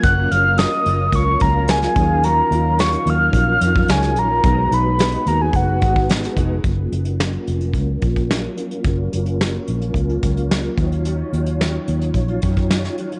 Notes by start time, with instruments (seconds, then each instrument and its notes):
Already playing: tonewheel organ F#3 A#3 C#4 F4 A#4, ambient pad F#3 C#4 A#4 F5
0.03 fingered electric bass F#1, steel-string acoustic guitar F#3 A#3 C#4 F4, soft synth lead F#6, kick, closed hi-hat
0.31 fingered electric bass F#1, steel-string acoustic guitar F#3 A#3 C#4 F4, soft synth lead F6, closed hi-hat
0.44 steel-string acoustic guitar A#3 C#4 F4
0.58 steel-string acoustic guitar F#3 A#3 C#4 F4, soft synth lead D#6, snare, closed hi-hat
0.71 closed hi-hat
0.85 fingered electric bass F#1, steel-string acoustic guitar F#3 A#3 C#4 F4, closed hi-hat
1.00 steel-string acoustic guitar A#3 C#4 F4
1.12 fingered electric bass C#2, soft synth lead C#6, kick, closed hi-hat
1.40 fingered electric bass C#2, steel-string acoustic guitar F#3 A#3 C#4 F4, soft synth lead A#5, kick, closed hi-hat
1.54 steel-string acoustic guitar A#3 C#4 F4
1.68 steel-string acoustic guitar F#3 A#3 C#4 F4, soft synth lead G#5, snare, closed hi-hat
1.82 steel-string acoustic guitar A#3 C#4 F4, snare, closed hi-hat
1.94 fingered electric bass D#2, steel-string acoustic guitar D#3 F#3 C#4, tonewheel organ F#3 C#4 D#4 F4, ambient pad D#4 C#5, kick, closed hi-hat
1.98 steel-string acoustic guitar F4, tonewheel organ A#4
2.09 steel-string acoustic guitar F#3 C#4 F4
2.23 steel-string acoustic guitar D#3 F#3 C#4 F4, soft synth lead A#5, closed hi-hat
2.50 fingered electric bass D#2, steel-string acoustic guitar D#3 F#3 C#4 F4, closed hi-hat
2.64 steel-string acoustic guitar F#3 C#4 F4
2.77 steel-string acoustic guitar D#3 F#3 C#4 F4, soft synth lead C#6, snare, closed hi-hat
2.93 closed hi-hat
3.05 fingered electric bass D#2, steel-string acoustic guitar D#3 F#3 C#4 F4, closed hi-hat
3.10 soft synth lead F6
3.20 steel-string acoustic guitar F#3 C#4 F4
3.33 fingered electric bass A#1, kick, closed hi-hat
3.61 fingered electric bass F2, steel-string acoustic guitar D#3 F#3 C#4 F4, closed hi-hat
3.75 steel-string acoustic guitar F#3 C#4 F4, kick
3.88 fingered electric bass C#2, steel-string acoustic guitar D#3 F#3 C#4 F4, soft synth lead G#5, snare, closed hi-hat
4.02 steel-string acoustic guitar F#3 C#4 F4, snare, closed hi-hat
4.16 fingered electric bass A#1, steel-string acoustic guitar D#3 F#3 C#4 F4, soft synth lead A#5, closed hi-hat
4.30 steel-string acoustic guitar F#3 C#4 F4
4.42 fingered electric bass B1, steel-string acoustic guitar B2 G#3 D#4 F#4, tonewheel organ G#3 B3 D#4 F#4, ambient pad G#4 B4 F#5, kick, closed hi-hat
4.48 tonewheel organ B4
4.71 fingered electric bass B1, steel-string acoustic guitar B2 G#3 D#4 F#4, soft synth lead B5, closed hi-hat
4.85 steel-string acoustic guitar G#3 D#4 F#4
4.98 steel-string acoustic guitar B2 G#3 D#4 F#4, snare, closed hi-hat
5.12 closed hi-hat
5.26 fingered electric bass D#2, steel-string acoustic guitar B2 G#3 D#4 F#4, soft synth lead A#5, closed hi-hat
5.39 steel-string acoustic guitar G#3 D#4 F#4, soft synth lead G#5
5.53 fingered electric bass F#1, soft synth lead F#5, kick, closed hi-hat
5.80 fingered electric bass G#1, steel-string acoustic guitar B2 G#3 D#4 F#4, kick, closed hi-hat
5.95 steel-string acoustic guitar G#3 D#4 F#4, kick
6.08 steel-string acoustic guitar B2 G#3 D#4 F#4, snare, closed hi-hat
6.22 steel-string acoustic guitar G#3 D#4 F#4, snare, closed hi-hat
6.36 fingered electric bass F1, steel-string acoustic guitar B2 G#3 D#4 F#4, kick, closed hi-hat
6.63 fingered electric bass F#1, tonewheel organ F#3 C#4 F4, steel-string acoustic guitar F#3 A#3 C#4 F4, kick, closed hi-hat
6.68 tonewheel organ A#4
6.90 fingered electric bass F#1, steel-string acoustic guitar F#3 A#3 C#4 F4, closed hi-hat
7.05 steel-string acoustic guitar A#3 C#4 F4, closed hi-hat
7.20 steel-string acoustic guitar F#3 A#3 C#4 F4, snare
7.33 closed hi-hat
7.47 fingered electric bass F1, closed hi-hat
7.60 steel-string acoustic guitar A#3 C#4 F4, closed hi-hat
7.74 fingered electric bass C#2, kick, closed hi-hat
7.88 steel-string acoustic guitar A#3 C#4 F4
8.02 fingered electric bass A#1, steel-string acoustic guitar F#3 A#3 C#4 F4, kick, closed hi-hat
8.16 kick, closed hi-hat
8.30 steel-string acoustic guitar F#3 A#3 C#4 F4, snare
8.57 steel-string acoustic guitar F#3 A#3 C#4 F4, closed hi-hat
8.70 steel-string acoustic guitar A#3 C#4 F4, closed hi-hat
8.84 fingered electric bass F#1, steel-string acoustic guitar F#3 A#3 C#4 F4, kick, closed hi-hat
9.12 fingered electric bass F#1, steel-string acoustic guitar F#3 A#3 C#4 F4, closed hi-hat
9.26 steel-string acoustic guitar A#3 C#4 F4, closed hi-hat
9.39 steel-string acoustic guitar F#3 A#3 C#4 F4, snare
9.53 closed hi-hat
9.68 fingered electric bass A#1, closed hi-hat
9.80 steel-string acoustic guitar A#3 C#4 F4, closed hi-hat
9.94 fingered electric bass C#2, kick, closed hi-hat
10.08 steel-string acoustic guitar A#3 C#4 F4, closed hi-hat
10.21 fingered electric bass C#2, steel-string acoustic guitar F#3 A#3 C#4 F4, kick, closed hi-hat
10.35 steel-string acoustic guitar A#3 C#4 F4, closed hi-hat
10.49 steel-string acoustic guitar F#3 A#3 C#4 F4, snare
10.64 closed hi-hat
10.75 fingered electric bass D#2, steel-string acoustic guitar D#3 F#3 C#4, tonewheel organ F#3 D#4 F4, kick, closed hi-hat
10.79 steel-string acoustic guitar F4, tonewheel organ B4
10.87 steel-string acoustic guitar F4, tonewheel organ C#5
10.92 steel-string acoustic guitar F#3 C#4, closed hi-hat
11.05 steel-string acoustic guitar D#3 F#3 C#4 F4, closed hi-hat
11.33 fingered electric bass D#2, steel-string acoustic guitar D#3 F#3 C#4 F4, closed hi-hat
11.45 steel-string acoustic guitar F#3 C#4 F4, closed hi-hat
11.60 steel-string acoustic guitar D#3 F#3 C#4 F4, snare
11.88 fingered electric bass D#2, closed hi-hat
12.01 closed hi-hat
12.14 fingered electric bass A#1, kick, closed hi-hat
12.28 steel-string acoustic guitar F#3 C#4 F4, closed hi-hat
12.42 fingered electric bass F#2, steel-string acoustic guitar D#3 F#3 C#4 F4, kick, closed hi-hat
12.56 kick, closed hi-hat
12.69 steel-string acoustic guitar D#3 F#3 C#4 F4, snare
12.83 snare, closed hi-hat
12.97 steel-string acoustic guitar D#3 F#3 C#4 F4, closed hi-hat
13.11 steel-string acoustic guitar F#3 C#4 F4, closed hi-hat